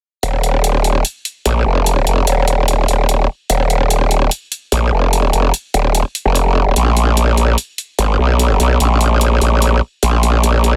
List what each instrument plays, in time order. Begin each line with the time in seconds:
0.23 wobble bass D#1, closed hi-hat
0.43 closed hi-hat
0.64 closed hi-hat
0.84 closed hi-hat
1.05 closed hi-hat
1.25 closed hi-hat
1.46 wobble bass A#1, closed hi-hat
1.66 wobble bass F1
1.86 closed hi-hat
2.07 wobble bass F1, closed hi-hat
2.27 wobble bass D#1, closed hi-hat
2.48 closed hi-hat
2.68 closed hi-hat
2.88 wobble bass D#1, closed hi-hat
3.09 closed hi-hat
3.50 wobble bass D#1, closed hi-hat
3.70 closed hi-hat
3.90 closed hi-hat
4.11 closed hi-hat
4.31 closed hi-hat
4.52 closed hi-hat
4.72 wobble bass A#1, closed hi-hat
4.92 wobble bass F1
5.13 closed hi-hat
5.33 wobble bass F1, closed hi-hat
5.54 closed hi-hat
5.74 wobble bass D#1, closed hi-hat
5.95 closed hi-hat
6.15 closed hi-hat
6.25 wobble bass F1
6.35 closed hi-hat
6.66 wobble bass D#1
6.76 wobble bass A#1, closed hi-hat
6.97 closed hi-hat
7.17 closed hi-hat
7.37 closed hi-hat
7.58 closed hi-hat
7.78 closed hi-hat
7.99 wobble bass G#1, closed hi-hat
8.19 wobble bass B1
8.39 closed hi-hat
8.60 wobble bass B1, closed hi-hat
8.80 wobble bass A#1, closed hi-hat
9.01 closed hi-hat
9.21 closed hi-hat
9.41 wobble bass A#1, closed hi-hat
9.62 closed hi-hat
10.03 wobble bass A#1, closed hi-hat
10.23 closed hi-hat
10.44 closed hi-hat
10.64 closed hi-hat